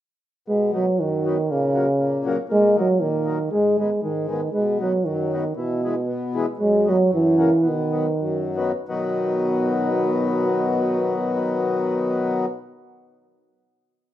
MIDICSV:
0, 0, Header, 1, 3, 480
1, 0, Start_track
1, 0, Key_signature, 5, "major"
1, 0, Tempo, 505476
1, 462, Time_signature, 2, 2, 24, 8
1, 3821, Tempo, 516796
1, 7181, Tempo, 594059
1, 7661, Tempo, 666667
1, 8141, Tempo, 699301
1, 11736, End_track
2, 0, Start_track
2, 0, Title_t, "Accordion"
2, 0, Program_c, 0, 21
2, 458, Note_on_c, 0, 47, 51
2, 697, Note_on_c, 0, 51, 50
2, 703, Note_on_c, 0, 54, 49
2, 715, Note_on_c, 0, 59, 48
2, 809, Note_off_c, 0, 51, 0
2, 812, Note_off_c, 0, 54, 0
2, 818, Note_off_c, 0, 59, 0
2, 825, Note_off_c, 0, 47, 0
2, 935, Note_on_c, 0, 42, 49
2, 1190, Note_on_c, 0, 51, 59
2, 1195, Note_on_c, 0, 54, 58
2, 1215, Note_on_c, 0, 59, 62
2, 1296, Note_off_c, 0, 51, 0
2, 1298, Note_off_c, 0, 54, 0
2, 1303, Note_off_c, 0, 42, 0
2, 1308, Note_off_c, 0, 59, 0
2, 1415, Note_on_c, 0, 46, 59
2, 1653, Note_on_c, 0, 49, 51
2, 1661, Note_on_c, 0, 54, 47
2, 1673, Note_on_c, 0, 58, 57
2, 1765, Note_off_c, 0, 49, 0
2, 1769, Note_off_c, 0, 54, 0
2, 1775, Note_off_c, 0, 58, 0
2, 1780, Note_off_c, 0, 46, 0
2, 1886, Note_on_c, 0, 46, 56
2, 2133, Note_on_c, 0, 49, 70
2, 2143, Note_on_c, 0, 54, 64
2, 2145, Note_on_c, 0, 58, 83
2, 2244, Note_off_c, 0, 49, 0
2, 2248, Note_off_c, 0, 54, 0
2, 2250, Note_off_c, 0, 58, 0
2, 2254, Note_off_c, 0, 46, 0
2, 2364, Note_on_c, 0, 46, 63
2, 2620, Note_on_c, 0, 51, 47
2, 2629, Note_on_c, 0, 54, 46
2, 2639, Note_on_c, 0, 58, 51
2, 2727, Note_off_c, 0, 51, 0
2, 2731, Note_off_c, 0, 54, 0
2, 2734, Note_off_c, 0, 46, 0
2, 2736, Note_off_c, 0, 58, 0
2, 2844, Note_on_c, 0, 46, 59
2, 3087, Note_on_c, 0, 51, 59
2, 3109, Note_on_c, 0, 54, 53
2, 3112, Note_on_c, 0, 58, 59
2, 3201, Note_off_c, 0, 51, 0
2, 3212, Note_off_c, 0, 54, 0
2, 3213, Note_off_c, 0, 58, 0
2, 3215, Note_off_c, 0, 46, 0
2, 3337, Note_on_c, 0, 44, 56
2, 3595, Note_on_c, 0, 51, 48
2, 3610, Note_on_c, 0, 56, 47
2, 3612, Note_on_c, 0, 59, 50
2, 3697, Note_off_c, 0, 51, 0
2, 3704, Note_off_c, 0, 44, 0
2, 3704, Note_off_c, 0, 56, 0
2, 3705, Note_off_c, 0, 59, 0
2, 3822, Note_on_c, 0, 44, 51
2, 4059, Note_on_c, 0, 51, 59
2, 4073, Note_on_c, 0, 56, 52
2, 4084, Note_on_c, 0, 59, 53
2, 4169, Note_off_c, 0, 51, 0
2, 4176, Note_off_c, 0, 56, 0
2, 4181, Note_off_c, 0, 59, 0
2, 4185, Note_off_c, 0, 44, 0
2, 4302, Note_on_c, 0, 47, 54
2, 4545, Note_on_c, 0, 51, 50
2, 4556, Note_on_c, 0, 54, 41
2, 4564, Note_on_c, 0, 59, 51
2, 4651, Note_off_c, 0, 51, 0
2, 4657, Note_off_c, 0, 54, 0
2, 4661, Note_off_c, 0, 59, 0
2, 4665, Note_off_c, 0, 47, 0
2, 4779, Note_on_c, 0, 42, 62
2, 5029, Note_on_c, 0, 51, 58
2, 5039, Note_on_c, 0, 54, 54
2, 5047, Note_on_c, 0, 59, 55
2, 5131, Note_off_c, 0, 51, 0
2, 5136, Note_off_c, 0, 54, 0
2, 5140, Note_off_c, 0, 42, 0
2, 5140, Note_off_c, 0, 59, 0
2, 5255, Note_on_c, 0, 52, 49
2, 5487, Note_off_c, 0, 52, 0
2, 5501, Note_on_c, 0, 52, 59
2, 5506, Note_on_c, 0, 56, 46
2, 5516, Note_on_c, 0, 59, 53
2, 5605, Note_off_c, 0, 52, 0
2, 5607, Note_off_c, 0, 56, 0
2, 5612, Note_off_c, 0, 59, 0
2, 5720, Note_on_c, 0, 47, 57
2, 5974, Note_on_c, 0, 52, 71
2, 5984, Note_on_c, 0, 56, 67
2, 5989, Note_on_c, 0, 59, 75
2, 6078, Note_off_c, 0, 52, 0
2, 6083, Note_off_c, 0, 56, 0
2, 6084, Note_off_c, 0, 47, 0
2, 6085, Note_off_c, 0, 59, 0
2, 6206, Note_on_c, 0, 42, 58
2, 6445, Note_on_c, 0, 51, 47
2, 6459, Note_on_c, 0, 54, 51
2, 6467, Note_on_c, 0, 59, 60
2, 6550, Note_off_c, 0, 51, 0
2, 6558, Note_off_c, 0, 54, 0
2, 6561, Note_off_c, 0, 59, 0
2, 6565, Note_off_c, 0, 42, 0
2, 6669, Note_on_c, 0, 42, 67
2, 6929, Note_on_c, 0, 49, 57
2, 6936, Note_on_c, 0, 54, 47
2, 6947, Note_on_c, 0, 58, 65
2, 7042, Note_off_c, 0, 49, 0
2, 7045, Note_off_c, 0, 54, 0
2, 7051, Note_off_c, 0, 42, 0
2, 7051, Note_off_c, 0, 58, 0
2, 7157, Note_on_c, 0, 47, 59
2, 7402, Note_on_c, 0, 51, 47
2, 7410, Note_on_c, 0, 54, 43
2, 7418, Note_on_c, 0, 59, 52
2, 7518, Note_off_c, 0, 51, 0
2, 7522, Note_off_c, 0, 54, 0
2, 7526, Note_off_c, 0, 59, 0
2, 7530, Note_off_c, 0, 47, 0
2, 7638, Note_on_c, 0, 42, 56
2, 7894, Note_on_c, 0, 51, 58
2, 7898, Note_on_c, 0, 54, 60
2, 7905, Note_on_c, 0, 59, 76
2, 8005, Note_off_c, 0, 51, 0
2, 8007, Note_off_c, 0, 54, 0
2, 8010, Note_off_c, 0, 59, 0
2, 8011, Note_off_c, 0, 42, 0
2, 8131, Note_on_c, 0, 51, 70
2, 8132, Note_on_c, 0, 59, 67
2, 8133, Note_on_c, 0, 54, 56
2, 10581, Note_off_c, 0, 51, 0
2, 10581, Note_off_c, 0, 59, 0
2, 10582, Note_off_c, 0, 54, 0
2, 11736, End_track
3, 0, Start_track
3, 0, Title_t, "Euphonium"
3, 0, Program_c, 1, 58
3, 462, Note_on_c, 1, 56, 76
3, 704, Note_off_c, 1, 56, 0
3, 709, Note_on_c, 1, 54, 72
3, 950, Note_on_c, 1, 51, 66
3, 964, Note_off_c, 1, 54, 0
3, 1439, Note_on_c, 1, 49, 73
3, 1454, Note_off_c, 1, 51, 0
3, 2164, Note_off_c, 1, 49, 0
3, 2392, Note_on_c, 1, 56, 98
3, 2626, Note_off_c, 1, 56, 0
3, 2656, Note_on_c, 1, 54, 81
3, 2854, Note_on_c, 1, 51, 68
3, 2869, Note_off_c, 1, 54, 0
3, 3336, Note_off_c, 1, 51, 0
3, 3341, Note_on_c, 1, 56, 82
3, 3582, Note_off_c, 1, 56, 0
3, 3604, Note_on_c, 1, 56, 70
3, 3809, Note_off_c, 1, 56, 0
3, 3834, Note_on_c, 1, 51, 62
3, 4068, Note_off_c, 1, 51, 0
3, 4079, Note_on_c, 1, 51, 60
3, 4282, Note_off_c, 1, 51, 0
3, 4288, Note_on_c, 1, 56, 73
3, 4535, Note_off_c, 1, 56, 0
3, 4557, Note_on_c, 1, 54, 68
3, 4777, Note_on_c, 1, 51, 66
3, 4791, Note_off_c, 1, 54, 0
3, 5251, Note_off_c, 1, 51, 0
3, 5256, Note_on_c, 1, 47, 62
3, 5950, Note_off_c, 1, 47, 0
3, 6208, Note_on_c, 1, 56, 88
3, 6488, Note_on_c, 1, 54, 79
3, 6502, Note_off_c, 1, 56, 0
3, 6693, Note_off_c, 1, 54, 0
3, 6722, Note_on_c, 1, 52, 69
3, 7216, Note_on_c, 1, 51, 70
3, 7228, Note_off_c, 1, 52, 0
3, 7929, Note_off_c, 1, 51, 0
3, 8142, Note_on_c, 1, 47, 64
3, 10586, Note_off_c, 1, 47, 0
3, 11736, End_track
0, 0, End_of_file